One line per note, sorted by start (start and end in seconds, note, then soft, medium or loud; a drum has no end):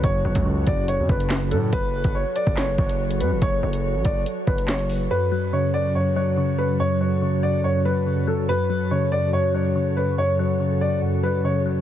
0.00 0.24 F#1 loud
0.00 0.04 F#2 medium
0.00 0.66 F#2 loud
0.00 0.46 C#3 medium
0.00 0.25 F#3 medium
0.00 1.69 F#3 medium
0.00 5.07 F#4 medium
0.00 5.07 A4 medium
0.00 1.69 C#5 medium
0.00 0.20 C#5 loud
0.00 kick loud
0.00 closed hi-hat medium
0.25 0.35 F#1 loud
0.25 1.08 F#3 medium
0.25 0.65 C#5 medium
0.35 0.66 C#2 loud
0.35 kick medium
0.35 closed hi-hat medium
0.46 1.29 C#3 medium
0.67 1.00 F#1 loud
0.67 0.87 F#2 medium
0.67 0.84 D5 medium
0.67 kick medium
0.67 closed hi-hat medium
0.88 1.73 F#2 medium
0.88 1.05 C#5 medium
0.88 closed hi-hat medium
0.99 1.09 F#2 loud
1.09 1.53 F#1 loud
1.09 1.50 F#3 medium
1.09 1.49 B4 medium
1.09 kick loud
1.20 closed hi-hat medium
1.30 1.73 C#3 medium
1.30 snare loud
1.30 clap medium
1.30 closed hi-hat medium
1.51 1.72 A2 loud
1.51 1.73 F#3 medium
1.51 1.68 A4 medium
1.51 closed hi-hat medium
1.73 2.03 F#1 loud
1.73 5.07 F#3 medium
1.73 2.12 B4 loud
1.73 5.07 C#5 medium
1.73 kick loud
1.73 closed hi-hat medium
2.04 2.25 F#1 loud
2.04 kick medium
2.04 closed hi-hat medium
2.15 2.31 C#5 medium
2.36 2.52 D5 medium
2.36 closed hi-hat medium
2.47 2.77 F#1 loud
2.47 kick loud
2.57 2.73 C#5 loud
2.57 snare loud
2.57 clap medium
2.57 closed hi-hat medium
2.78 3.22 F#1 loud
2.78 3.18 C#5 medium
2.78 kick loud
2.89 closed hi-hat medium
3.11 closed hi-hat medium
3.20 3.33 F#2 loud
3.20 3.37 B4 medium
3.20 closed hi-hat medium
3.31 3.41 F#1 loud
3.42 3.62 F#1 loud
3.42 3.58 C#5 loud
3.42 kick loud
3.42 closed hi-hat medium
3.63 3.96 F#1 loud
3.63 4.03 C#5 medium
3.73 closed hi-hat medium
3.95 4.05 A1 loud
4.05 4.25 F#1 loud
4.05 4.21 D5 medium
4.05 kick medium
4.05 closed hi-hat medium
4.26 closed hi-hat medium
4.47 5.08 F#1 loud
4.47 4.64 B4 medium
4.47 kick loud
4.58 closed hi-hat medium
4.68 4.85 C#5 medium
4.68 snare loud
4.68 clap medium
4.68 closed hi-hat medium
4.79 closed hi-hat medium
4.89 open hi-hat medium
5.11 5.72 F#2 loud
5.11 8.45 F#3 medium
5.11 11.81 F#4 medium
5.11 11.81 A4 medium
5.11 5.50 B4 loud
5.11 11.81 C#5 medium
5.32 6.15 F#3 medium
5.53 6.36 C#3 medium
5.53 5.69 C#5 medium
5.74 5.94 F#2 medium
5.74 5.90 D5 medium
5.95 6.79 F#2 medium
5.95 6.11 C#5 medium
6.16 6.57 F#3 medium
6.16 6.56 C#5 medium
6.37 7.21 C#3 medium
6.58 7.00 F#3 medium
6.58 6.75 B4 medium
6.80 7.42 F#2 loud
6.80 6.96 C#5 loud
7.01 7.84 F#3 medium
7.01 7.40 C#5 medium
7.22 8.05 C#3 medium
7.43 7.63 F#2 medium
7.43 7.59 D5 medium
7.64 8.48 F#2 loud
7.64 7.80 C#5 medium
7.85 8.26 F#3 medium
7.85 8.25 B4 medium
8.06 8.49 C#3 medium
8.27 8.49 F#3 medium
8.27 8.44 A4 medium
8.49 9.11 F#2 medium
8.49 11.81 F#3 medium
8.49 8.89 B4 loud
8.70 9.53 F#3 medium
8.91 9.74 C#3 medium
8.91 9.07 C#5 medium
9.12 9.32 F#2 medium
9.12 9.28 D5 medium
9.33 10.17 F#2 medium
9.33 9.50 C#5 loud
9.54 9.96 F#3 medium
9.54 9.94 C#5 medium
9.76 10.59 C#3 medium
9.97 10.38 F#3 medium
9.97 10.13 B4 medium
10.18 10.80 F#2 medium
10.18 10.34 C#5 loud
10.39 11.22 F#3 medium
10.39 10.79 C#5 medium
10.60 11.43 C#3 medium
10.81 11.01 F#2 medium
10.81 10.97 D5 medium
11.02 11.81 F#2 medium
11.23 11.65 F#3 medium
11.23 11.40 B4 medium
11.44 11.81 C#3 medium
11.44 11.61 C#5 medium
11.66 11.81 F#3 medium